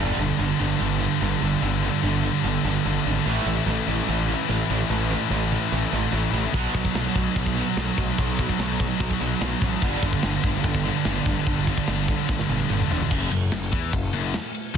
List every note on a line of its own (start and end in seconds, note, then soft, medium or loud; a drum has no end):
0.00 0.10 G1 loud
0.00 0.17 G2 medium
0.00 0.18 D3 medium
0.00 0.18 G3 medium
0.06 0.12 G2 medium
0.06 0.14 D3 medium
0.13 0.20 G2 medium
0.13 0.21 D3 medium
0.18 0.31 G1 medium
0.18 0.29 G2 medium
0.18 0.29 D3 medium
0.29 0.36 G2 medium
0.29 0.36 D3 medium
0.36 0.51 G1 loud
0.36 0.43 G2 medium
0.36 0.45 D3 medium
0.44 0.51 G2 medium
0.44 0.53 D3 medium
0.52 0.59 G2 medium
0.52 0.60 D3 medium
0.59 0.73 G1 medium
0.59 0.67 G2 medium
0.59 0.67 D3 medium
0.67 0.75 G2 medium
0.67 0.75 D3 medium
0.75 0.83 G2 medium
0.75 0.83 D3 medium
0.81 1.05 G1 medium
0.81 0.90 G2 medium
0.81 0.91 D3 medium
0.90 0.97 G2 medium
0.90 0.98 D3 medium
0.98 1.06 G2 medium
0.98 1.06 D3 medium
1.06 1.13 G2 medium
1.06 1.14 D3 medium
1.13 1.21 G2 medium
1.13 1.22 D3 medium
1.21 1.34 G1 loud
1.21 1.29 G2 medium
1.21 1.30 D3 medium
1.29 1.37 G2 medium
1.29 1.36 D3 medium
1.37 1.44 G2 medium
1.37 1.44 D3 medium
1.42 1.54 G1 loud
1.42 1.52 G2 medium
1.42 1.52 D3 medium
1.52 1.60 G2 medium
1.52 1.60 D3 medium
1.61 1.87 G1 loud
1.61 1.69 G2 medium
1.61 1.70 D3 medium
1.70 1.77 G2 medium
1.70 1.77 D3 medium
1.78 1.84 G2 medium
1.78 1.85 D3 medium
1.84 1.92 G2 medium
1.84 1.93 D3 medium
1.92 2.00 G2 medium
1.92 2.01 D3 medium
2.00 2.28 G1 medium
2.00 2.08 G2 medium
2.00 2.09 D3 medium
2.08 2.16 G2 medium
2.08 2.16 D3 medium
2.16 2.24 G2 medium
2.16 2.24 D3 medium
2.24 2.30 G2 medium
2.24 2.32 D3 loud
2.31 2.39 G2 medium
2.31 2.40 D3 medium
2.40 2.48 G2 medium
2.40 2.48 D3 medium
2.44 2.57 G1 loud
2.44 2.63 D3 medium
2.48 2.54 G2 medium
2.48 2.55 D3 medium
2.55 2.63 G2 medium
2.55 2.63 D3 medium
2.63 2.77 G1 loud
2.63 2.70 G2 medium
2.63 2.70 D3 medium
2.70 2.78 G2 medium
2.70 2.78 D3 medium
2.78 2.86 G2 medium
2.78 2.86 D3 medium
2.85 2.98 G1 medium
2.85 2.93 G2 medium
2.85 2.95 D3 medium
2.93 3.01 G2 medium
2.93 3.02 D3 medium
3.02 3.18 G#1 medium
3.02 3.10 G2 medium
3.02 3.09 D3 medium
3.10 3.18 G2 medium
3.10 3.17 D3 medium
3.18 3.25 G2 medium
3.18 3.26 D3 medium
3.25 3.38 A1 medium
3.25 3.32 A2 medium
3.25 3.33 E3 loud
3.25 3.46 A3 medium
3.32 3.40 A2 medium
3.32 3.41 E3 medium
3.42 3.47 A2 medium
3.42 3.48 E3 medium
3.46 3.59 A1 medium
3.46 3.55 A2 medium
3.46 3.56 E3 medium
3.56 3.64 A2 medium
3.56 3.64 E3 medium
3.64 3.79 A1 loud
3.64 3.72 A2 medium
3.64 3.72 E3 medium
3.72 3.78 A2 medium
3.72 3.80 E3 medium
3.78 3.86 A2 medium
3.78 3.88 E3 medium
3.87 4.00 A1 medium
3.87 3.95 A2 medium
3.87 3.96 E3 loud
3.95 4.03 A2 medium
3.95 4.02 E3 medium
4.03 4.11 A2 medium
4.03 4.10 E3 medium
4.08 4.33 A1 loud
4.08 4.18 A2 medium
4.08 4.18 E3 medium
4.18 4.26 A2 medium
4.18 4.26 E3 loud
4.27 4.33 A2 medium
4.27 4.34 E3 medium
4.33 4.41 A2 medium
4.33 4.42 E3 loud
4.42 4.49 A2 medium
4.42 4.50 E3 medium
4.49 4.62 A1 medium
4.49 4.57 A2 medium
4.49 4.58 E3 medium
4.58 4.65 A2 medium
4.58 4.66 E3 medium
4.65 4.73 A2 medium
4.65 4.73 E3 medium
4.70 4.82 A1 loud
4.70 4.79 A2 medium
4.70 4.81 E3 medium
4.79 4.87 A2 medium
4.79 4.89 E3 medium
4.90 5.15 A1 loud
4.90 4.96 A2 medium
4.90 4.98 E3 medium
4.97 5.04 A2 medium
4.97 5.05 E3 medium
5.05 5.12 A2 medium
5.05 5.13 E3 medium
5.12 5.20 A2 medium
5.12 5.21 E3 medium
5.20 5.28 A2 medium
5.20 5.29 E3 medium
5.29 5.56 A1 loud
5.29 5.36 A2 medium
5.29 5.36 E3 medium
5.37 5.43 A2 medium
5.37 5.45 E3 medium
5.43 5.51 A2 medium
5.43 5.53 E3 medium
5.52 5.60 A2 medium
5.52 5.60 E3 medium
5.60 5.68 A2 medium
5.60 5.68 E3 medium
5.68 5.76 A2 medium
5.68 5.76 E3 medium
5.72 5.85 A1 loud
5.72 5.91 A2 medium
5.76 5.83 A2 medium
5.76 5.84 E3 medium
5.84 5.91 A2 medium
5.84 5.92 E3 medium
5.92 6.05 A1 medium
5.92 6.00 A2 medium
5.92 5.99 E3 medium
6.00 6.07 A2 medium
6.00 6.07 E3 medium
6.07 6.14 A2 medium
6.07 6.15 E3 medium
6.12 6.25 A1 medium
6.12 6.22 A2 medium
6.12 6.23 E3 medium
6.23 6.31 A2 medium
6.23 6.30 E3 medium
6.31 6.46 A1 medium
6.31 6.37 A2 medium
6.31 6.38 E3 medium
6.38 6.45 A2 medium
6.38 6.46 E3 medium
6.46 6.54 A2 medium
6.46 6.53 E3 medium
6.53 6.67 B1 medium
6.53 6.61 B2 loud
6.53 6.61 F#3 medium
6.53 6.74 B3 medium
6.53 kick loud
6.53 crash medium
6.61 6.68 B2 medium
6.61 6.68 F#3 medium
6.69 6.76 B2 medium
6.69 6.76 F#3 medium
6.74 6.87 B1 medium
6.74 6.84 B2 medium
6.74 6.84 F#3 medium
6.74 kick medium
6.74 crash medium
6.85 6.90 B2 medium
6.85 6.93 F#3 medium
6.85 kick medium
6.91 7.07 B1 medium
6.91 6.98 B2 medium
6.91 7.00 F#3 medium
6.95 7.06 B2 medium
6.95 snare loud
6.95 crash medium
7.00 7.08 F#3 medium
7.07 7.15 B2 medium
7.07 7.15 F#3 medium
7.15 7.28 B1 medium
7.15 7.23 B2 medium
7.15 7.23 F#3 medium
7.15 kick medium
7.15 crash medium
7.23 7.30 B2 medium
7.23 7.31 F#3 medium
7.31 7.38 B2 medium
7.31 7.38 F#3 medium
7.36 7.61 B1 loud
7.36 7.46 B2 medium
7.36 7.46 F#3 medium
7.36 kick loud
7.36 crash medium
7.46 7.54 B2 medium
7.46 7.55 F#3 medium
7.46 kick medium
7.54 7.61 B2 medium
7.54 7.62 F#3 medium
7.54 crash medium
7.61 7.69 B2 medium
7.61 7.71 F#3 medium
7.69 7.77 B2 medium
7.69 7.78 F#3 medium
7.77 7.90 B1 medium
7.77 7.85 B2 medium
7.77 7.86 F#3 medium
7.77 snare loud
7.77 crash medium
7.86 7.92 B2 medium
7.86 7.93 F#3 medium
7.92 8.00 B2 medium
7.92 8.01 F#3 medium
7.98 8.10 B1 loud
7.98 8.08 B2 medium
7.98 8.16 F#3 medium
7.98 kick medium
7.98 crash medium
8.02 8.09 F#3 medium
8.08 8.16 B2 medium
8.08 8.17 F#3 medium
8.18 8.43 B1 loud
8.18 8.25 B2 loud
8.18 8.26 F#3 medium
8.18 kick loud
8.18 crash medium
8.26 8.34 B2 medium
8.26 8.34 F#3 medium
8.34 8.40 B2 medium
8.34 8.42 F#3 medium
8.39 8.49 B2 medium
8.39 8.49 F#3 medium
8.39 kick medium
8.39 crash medium
8.49 8.56 B2 medium
8.49 8.56 F#3 medium
8.49 kick medium
8.57 8.84 B1 loud
8.57 8.64 B2 medium
8.57 8.64 F#3 medium
8.57 snare loud
8.57 crash medium
8.65 8.72 B2 medium
8.65 8.71 F#3 medium
8.71 8.79 B2 medium
8.71 8.79 F#3 medium
8.80 8.87 B2 medium
8.80 8.90 F#3 medium
8.80 kick medium
8.80 crash medium
8.88 8.95 B2 medium
8.88 8.96 F#3 medium
8.96 9.13 B1 loud
8.96 9.03 B2 medium
8.96 9.04 F#3 medium
8.96 crash medium
9.00 9.11 B2 medium
9.00 kick loud
9.05 9.12 F#3 medium
9.11 9.19 B2 medium
9.11 9.20 F#3 medium
9.11 kick medium
9.20 9.33 B1 medium
9.20 9.27 B2 medium
9.20 9.27 F#3 medium
9.20 crash medium
9.27 9.35 B2 medium
9.27 9.34 F#3 medium
9.35 9.43 B2 medium
9.35 9.42 F#3 medium
9.41 9.54 B1 medium
9.41 9.50 B2 medium
9.41 9.51 F#3 medium
9.41 snare loud
9.41 crash medium
9.50 9.58 B2 medium
9.50 9.58 F#3 medium
9.58 9.74 A1 medium
9.58 9.66 B2 medium
9.58 9.66 F#3 medium
9.58 kick medium
9.58 crash medium
9.66 9.74 B2 medium
9.66 9.75 F#3 medium
9.74 9.82 B2 medium
9.74 9.84 F#3 medium
9.81 9.95 G1 loud
9.81 9.88 G2 medium
9.81 9.90 D3 loud
9.81 10.02 G3 medium
9.81 kick loud
9.81 crash medium
9.88 9.96 G2 medium
9.88 9.97 D3 medium
9.96 10.04 G2 medium
9.96 10.05 D3 medium
10.02 10.15 G1 medium
10.02 10.11 G2 medium
10.02 10.13 D3 medium
10.02 kick medium
10.02 crash medium
10.12 10.19 G2 medium
10.12 10.21 D3 medium
10.12 kick medium
10.20 10.28 G2 medium
10.20 10.28 D3 medium
10.20 snare loud
10.20 crash medium
10.24 10.36 G1 loud
10.24 10.42 G2 medium
10.28 10.35 G2 medium
10.28 10.36 D3 medium
10.36 10.43 G2 medium
10.36 10.44 D3 medium
10.43 10.56 G1 medium
10.43 10.51 G2 medium
10.43 10.51 D3 medium
10.43 kick medium
10.43 crash medium
10.51 10.58 G2 medium
10.51 10.59 D3 medium
10.58 10.66 G2 medium
10.58 10.67 D3 loud
10.64 10.89 G1 loud
10.64 10.75 D3 medium
10.64 kick loud
10.64 crash medium
10.68 10.74 G2 medium
10.74 10.82 G2 medium
10.74 10.83 D3 medium
10.74 kick medium
10.83 10.90 G2 medium
10.83 10.91 D3 medium
10.83 crash medium
10.91 10.97 G2 medium
10.91 10.98 D3 medium
10.97 11.05 G2 medium
10.97 11.06 D3 medium
11.05 11.18 G1 loud
11.05 11.13 G2 medium
11.05 11.14 D3 medium
11.05 snare loud
11.05 crash medium
11.14 11.21 G2 medium
11.14 11.22 D3 medium
11.21 11.29 G2 medium
11.21 11.29 D3 medium
11.26 11.38 G1 medium
11.26 11.37 D3 medium
11.26 kick medium
11.26 crash medium
11.30 11.37 G2 medium
11.37 11.45 G2 medium
11.37 11.45 D3 medium
11.46 11.72 G1 medium
11.46 11.54 G2 medium
11.46 11.54 D3 medium
11.46 kick loud
11.46 crash medium
11.54 11.62 G2 medium
11.54 11.63 D3 medium
11.62 11.69 G2 medium
11.62 11.68 D3 medium
11.67 11.77 G2 medium
11.67 11.77 D3 medium
11.67 kick medium
11.67 crash medium
11.78 11.84 G2 medium
11.78 11.85 D3 medium
11.78 kick medium
11.85 12.13 G1 loud
11.85 11.92 G2 medium
11.85 11.93 D3 medium
11.85 snare loud
11.85 crash medium
11.93 12.00 G2 medium
11.93 12.01 D3 medium
12.01 12.08 G2 medium
12.01 12.09 D3 medium
12.08 12.16 G2 medium
12.08 12.15 D3 medium
12.08 kick medium
12.08 crash medium
12.16 12.25 G2 medium
12.16 12.24 D3 medium
12.25 12.41 G1 loud
12.25 12.32 G2 medium
12.25 12.31 D3 medium
12.25 kick loud
12.29 12.40 G2 medium
12.29 12.40 D3 medium
12.29 snare medium
12.39 12.47 G2 medium
12.39 12.48 D3 medium
12.39 snare medium
12.48 12.62 G1 medium
12.48 12.55 G2 medium
12.48 12.56 D3 medium
12.48 high tom medium
12.55 12.63 G2 medium
12.55 12.64 D3 medium
12.60 12.70 G2 medium
12.60 high tom medium
12.64 12.71 D3 medium
12.70 12.82 G1 loud
12.70 12.78 G2 medium
12.70 12.78 D3 medium
12.70 mid tom medium
12.78 12.87 G2 medium
12.78 12.86 D3 medium
12.78 mid tom medium
12.86 13.03 E1 loud
12.86 12.94 G2 medium
12.86 12.94 D3 medium
12.91 13.02 D3 medium
12.91 floor tom loud
12.95 13.02 G2 medium
13.01 13.10 G2 medium
13.01 13.10 D3 medium
13.01 floor tom medium
13.11 13.30 F#1 loud
13.11 13.30 F#2 loud
13.11 kick loud
13.11 crash loud
13.31 13.50 F#1 medium
13.31 13.48 F#2 medium
13.31 ride medium
13.52 13.71 F#1 medium
13.52 13.68 F#2 medium
13.52 snare loud
13.52 ride loud
13.72 13.91 E2 loud
13.72 13.92 E3 loud
13.72 kick loud
13.72 ride medium
13.93 14.12 F#1 medium
13.93 14.09 F#2 medium
13.93 kick loud
13.93 ride loud
14.13 14.32 F#1 loud
14.13 14.33 F#2 loud
14.13 ride medium
14.34 snare loud
14.34 ride loud
14.55 ride medium
14.74 14.78 F#2 medium